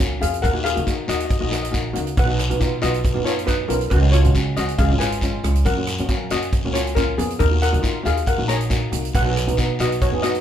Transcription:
Already playing: C#2 F4 C#5
0.00 A#3 C#4 F#4, kick, closed hi-hat, short guiro
0.20 F2 A#3 C#4 F#4 G#4 F5, closed hi-hat
0.34 closed hi-hat
0.42 D#2 A#4 F#5, kick, closed hi-hat, long guiro
0.53 A#3 D#4 F#4
0.64 G#4 F5, cross-stick, closed hi-hat
0.76 D#3 A#3 D#4 F#4, closed hi-hat
0.86 A#3 D#4 F#4, kick, closed hi-hat, short guiro
1.08 D#2 A#3 D#4 F#4 D#5, closed hi-hat, short guiro
1.17 D#5, closed hi-hat
1.25 D#5
1.30 D#5, kick, closed hi-hat, long guiro
1.41 A#1 A#3 D#4 F#4 D#5
1.47 D#5
1.51 A#3 D#4 F#4 D#5, cross-stick, closed hi-hat, short guiro
1.63 D#5, closed hi-hat
1.71 A#3 D#4 F#4, kick, closed hi-hat, short guiro
1.93 C#2 A#3 D#4 F#4, closed hi-hat
2.07 closed hi-hat
2.17 B1 B4 F#5, kick, closed hi-hat, long guiro
2.26 B3 D#4 F#4
2.39 cross-stick, closed hi-hat
2.50 B2 B3 D#4 F#4, closed hi-hat
2.59 B3 D#4 F4, kick, closed hi-hat, short guiro
2.81 B1 B3 D#4 F4 F#4 D#5, closed hi-hat, short guiro
2.94 closed hi-hat
3.04 kick, closed hi-hat, long guiro
3.14 F#2 B3 D#4 F#4
3.24 B3 D#4 F4 C#5, cross-stick, closed hi-hat, short guiro
3.39 closed hi-hat
3.46 B3 D#4 F#4 B4, kick, closed hi-hat, short guiro
3.68 B1 B3 C#4 D#4 F4 A#4, closed hi-hat
3.81 closed hi-hat
3.90 C#2 F#4 B4, kick, closed hi-hat, long guiro
4.02 G#3 C#4 F#4
4.12 F4 C#5, cross-stick, closed hi-hat
4.24 C#3 G#3 C#4 F#4, closed hi-hat
4.35 G#3 C#4 F#4, kick, closed hi-hat, short guiro
4.57 C#2 G#3 C#4 F#4 D#5, closed hi-hat, short guiro
4.69 closed hi-hat
4.78 C#2 G#4 F5, kick, closed hi-hat, long guiro
4.90 G#1 G#3 C#4 F4
4.99 G#3 C#4 F4 B4 G#5, cross-stick, closed hi-hat, short guiro
5.12 closed hi-hat
5.21 G#3 C#4 F4, kick, closed hi-hat, short guiro
5.44 C#2 G#3 C#4 F4, cross-stick, closed hi-hat
5.55 closed hi-hat
5.65 F#2 A#4 F#5, kick, closed hi-hat, long guiro
5.77 A#3 C#4 F#4
5.87 cross-stick, closed hi-hat
5.98 F#3 A#3 C#4 F#4, closed hi-hat
6.09 A#3 C#4 F#4, kick, closed hi-hat, short guiro
6.30 F#2 A#3 C#4 F#4 D#5, closed hi-hat, short guiro
6.42 closed hi-hat
6.53 kick, closed hi-hat, long guiro
6.64 C#2 A#3 C#4 F#4
6.74 A#3 C#4 F4 F#4 C#5, cross-stick, closed hi-hat, short guiro
6.87 closed hi-hat
6.95 A#3 C#4 F4 A#4, kick, closed hi-hat, short guiro
7.18 F2 A#3 B3 C#4 G#4, closed hi-hat
7.30 closed hi-hat
7.39 D#2 D#4 A#4, kick, closed hi-hat, long guiro
7.51 A#3 D#4 F#4
7.62 A#4 F#5, cross-stick, closed hi-hat
7.73 D#3 A#3 D#4 F#4, closed hi-hat
7.82 A#3 D#4 F4, kick, closed hi-hat, short guiro
8.03 D#2 A#3 D#4 F#4 G#4 F5, closed hi-hat, short guiro
8.17 closed hi-hat
8.27 A#4 F#5, kick, closed hi-hat, long guiro
8.38 A#1 A#3 D#4 F#4
8.48 A#3 D#4 G#4 C#5 A#5, cross-stick, closed hi-hat, short guiro
8.61 closed hi-hat
8.70 A#3 D#4 F#4, kick, closed hi-hat, short guiro
8.92 C2 A#3 D#4 F#4, closed hi-hat
9.05 closed hi-hat
9.13 B1 B4 F#5, kick, closed hi-hat, long guiro
9.25 B3 D#4 F#4
9.37 cross-stick, closed hi-hat
9.47 B2 B3 D#4 F#4, closed hi-hat
9.57 B3 D#4 F#4, kick, closed hi-hat, short guiro
9.79 B1 B3 D#4 F#4 D#5, closed hi-hat, short guiro
9.92 closed hi-hat
10.01 F#4 C#5, kick, closed hi-hat, long guiro
10.12 F#2 B3 D#4 G#4
10.22 B3 D#4 F#4 D#5, cross-stick, closed hi-hat, short guiro
10.35 closed hi-hat

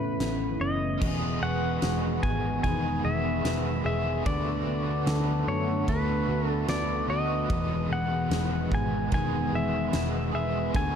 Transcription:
Already playing: A2 C#3 E3 A3 B3 C#4 E4 B4
0.20 A1 B3, snare, closed hi-hat
0.60 F#1 C#4 D#5
0.98 E1 E2 B2 D#3 G#3 B3 G#4 B4, kick, crash
1.04 G#3 B3 G#4
1.42 E1 B3 F#5 C#6
1.82 E1 G#3, snare, ride, tambourine
2.22 G#1 B3 G#5, kick
2.63 E1 D#3 G#3 G#5, kick, ride
2.67 B3 G#4
3.04 E1 G#4 E5
3.44 E1 B3, snare, ride, tambourine
3.84 E1 B3 G#4 E5
3.88 D#3 G#3
4.23 D2 D3 A3 B3 F#4 D5, kick, ride
4.29 B3 F#4
4.66 D2 B3
5.06 D2 A3 A5, snare, ride, tambourine
5.47 F#2 B3 C#5
5.87 D2 D3 A3 B4, kick, ride
5.91 B3 F#4
6.29 D2 F#4
6.49 A4
6.69 D2 B3 D5, snare, ride, tambourine
7.08 D2 B3 F#4 D#5
7.14 A3
7.48 E1 E2 B2 G#3, kick, ride
7.52 D#3 G#3 B3
7.90 E1 B3 F#5
8.30 E1 G#3, snare, ride, tambourine
8.72 G#1 B3 G#5, kick
9.11 E1 D#3 G#3 G#5, kick, ride
9.15 B3 G#4
9.53 E1 G#4 E5
9.93 E1 B3, snare, ride, tambourine
10.31 E1 B3 G#4 E5
10.36 D#3 G#3
10.72 D2 D3 A3 F#4 B4 G#5, kick, ride
10.76 A3 B3
10.81 F#4

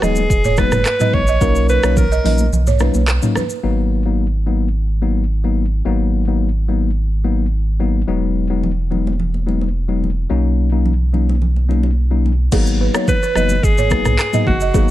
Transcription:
0.02 D#1 F#3 G#3 B3 D#4 G#4 D#5, cross-stick, low conga, shaker
0.16 high conga, shaker
0.30 E1, kick, shaker
0.44 C#5, mid tom, high conga, shaker
0.57 F#3 G#3 B3 D#4 B4, kick, cross-stick, high conga, shaker
0.72 F#1, cross-stick, mid tom, high conga, shaker
0.85 cross-stick, clap, shaker
1.00 F#3 G#3 B3 D#4 D#5, mid tom, shaker
1.13 A#1 C#5, kick, high conga, low conga
1.27 D#5, shaker
1.41 B1 F#3 A#3 C#4 D#4 A#4, kick, shaker
1.55 shaker
1.69 B4, shaker
1.83 B1 F#3 A#3 C#4 D#4 C#5, cross-stick, shaker
1.97 A#4, kick, low conga, shaker
2.12 D#5, shaker
2.24 A#1 F#3 A#3 C#4 D#4 D#5, open hi-hat, low conga
2.38 high conga, shaker
2.52 B1, low conga, shaker
2.67 C#5, mid tom, high conga, shaker
2.79 F#3 A#3 C#4 D#4 B4, cross-stick, high conga, shaker
2.94 B1, high conga, shaker
3.08 cross-stick, clap, shaker
3.22 F#3 A#3 C#4 D#4, mid tom, shaker
3.35 B4, cross-stick, high conga, low conga, shaker
3.50 shaker
3.63 G#1 F#3 A#3 B3 D#4
4.05 F#3 A#3 B3 D#4
4.46 F#3 A#3 B3 D#4
5.02 F#3 A#3 B3 D#4
5.44 F#3 A#3 B3 D#4
5.85 G#1 F#3 A#3 B3 D#4
6.27 F#3 A#3 B3 D#4
6.68 F#3 A#3 B3 D#4
7.24 F#3 A#3 B3 D#4
7.80 F#3 A#3 B3 D#4
8.07 E1 F#3 G#3 B3 D#4
8.50 F#3 G#3 B3 D#4
8.63 low conga
8.91 F#3 G#3 B3 D#4, low conga
9.07 high conga
9.20 low conga
9.34 high conga
9.46 F#3 G#3 B3 D#4, high conga
9.61 high conga
9.88 F#3 G#3 B3 D#4
10.04 high conga, low conga
10.30 B1 F#3 A#3 C#4 D#4
10.72 F#3 A#3 C#4 D#4
10.86 low conga
11.13 F#3 A#3 C#4 D#4, low conga
11.29 high conga
11.42 low conga
11.56 high conga
11.69 F#3 A#3 C#4 D#4, high conga
11.83 high conga
12.11 F#3 A#3 C#4 D#4
12.26 high conga, low conga
12.52 G#1 F#3 A#3 B3 D#4 G#4, kick, crash, shaker
12.66 shaker
12.81 B4
12.94 F#3 A#3 B3 D#4 C#5, cross-stick, shaker
13.08 B4, kick, low conga, shaker
13.23 B4, shaker
13.35 F#1 F#3 A#3 B3 D#4 B4 D#5, cross-stick, low conga, shaker
13.49 high conga, shaker
13.63 G#1 G#4, kick, shaker
13.78 C#5, mid tom, high conga, shaker
13.90 F#3 A#3 B3 D#4 B4, kick, cross-stick, high conga, shaker
14.05 B1, cross-stick, mid tom, high conga, shaker
14.19 cross-stick, clap, shaker
14.33 F#3 A#3 B3 D#4 D#5, mid tom, shaker
14.47 F#1 F#4, kick, high conga, low conga
14.61 D#5, shaker
14.74 G#1 F#3 A#3 B3 D#4 G#4, kick, shaker

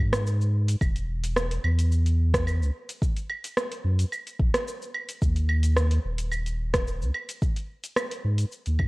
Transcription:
0.00 G#2
0.13 cross-stick, closed hi-hat, cabasa
0.27 cabasa
0.41 cabasa
0.68 closed hi-hat, cabasa
0.81 E1, kick, cabasa, claves
0.96 closed hi-hat, cabasa
1.24 closed hi-hat, cabasa
1.36 cross-stick, cabasa
1.51 closed hi-hat, cabasa
1.64 E2, claves
1.79 closed hi-hat, cabasa
1.92 cabasa
2.06 closed hi-hat, cabasa
2.34 kick, cross-stick, closed hi-hat, cabasa
2.47 cabasa, claves
2.61 C#2, cabasa
2.89 closed hi-hat, cabasa
3.02 kick, cabasa
3.16 closed hi-hat, cabasa
3.29 claves
3.44 closed hi-hat, cabasa
3.57 cross-stick, cabasa
3.71 closed hi-hat, cabasa
3.84 F#2
3.99 closed hi-hat, cabasa
4.12 cabasa, claves
4.27 closed hi-hat, cabasa
4.39 A#1, kick
4.54 cross-stick, closed hi-hat, cabasa
4.68 cabasa
4.82 cabasa
4.95 claves
5.09 closed hi-hat, cabasa
5.22 D#2, kick, cabasa
5.36 closed hi-hat, cabasa
5.49 claves
5.63 closed hi-hat, cabasa
5.77 cross-stick, cabasa
5.91 closed hi-hat, cabasa
6.05 D#1
6.18 closed hi-hat, cabasa
6.32 cabasa, claves
6.46 closed hi-hat, cabasa
6.74 kick, cross-stick, closed hi-hat, cabasa
6.87 cabasa
7.01 C#2, cabasa
7.14 claves
7.29 closed hi-hat, cabasa
7.42 kick, cabasa
7.56 closed hi-hat, cabasa
7.84 closed hi-hat, cabasa
7.96 cross-stick, cabasa, claves
8.11 closed hi-hat, cabasa
8.24 G#2
8.38 closed hi-hat, cabasa
8.52 cabasa
8.66 D#2, closed hi-hat, cabasa
8.79 G#2, kick, claves

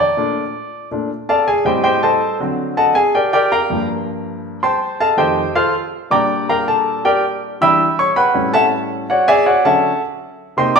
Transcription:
0.00 D5
0.17 A#2 A3 D4
0.91 A#2 A3 D4
1.29 A4 D5 F5 A5
1.48 G#4 G#5
1.65 A2 G3 C4 G4 C5 D#5 G5
1.84 G4 C5 D#5 G5
2.03 A4 C5 D#5 A5
2.40 D3 F#3 C4
2.77 A4 D#5 F#5 A5
2.95 G#4 G#5
3.15 G4 A#4 D5 G5
3.33 G4 A#4 D5 G5
3.52 A#4 F5 G5 A#5
3.70 G2 F3 A#3
4.63 C5 G5 A5 C6
5.00 A4 D#5 F5 A5
5.17 F2 D#3 A3 G4 C5 D#5 G5
5.56 F4 A4 C5 F5
6.11 A#2 G3 D4 D5 G5 A#5 D6
6.49 A#4 F5 G5 A#5
6.68 A4 A5
7.05 G4 A#4 D5 G5
7.61 E3 G3 D4 E5 G5 B5 E6
7.99 C#5 C#6
8.16 B4 F#5 G5 B5
8.34 A2 G3 C#4
8.54 A4 E5 F#5 A5
9.10 F#4 C#5 D5 F#5
9.28 G#4 D5 E5 G#5
9.46 F#4 C#5 D5 F#5
9.65 D3 F#3 C#4 A4 E5 F#5 A5
10.57 C3 A#3 D#4 C5 D#5 G5 C6
10.76 D5 G5 A#5 D6

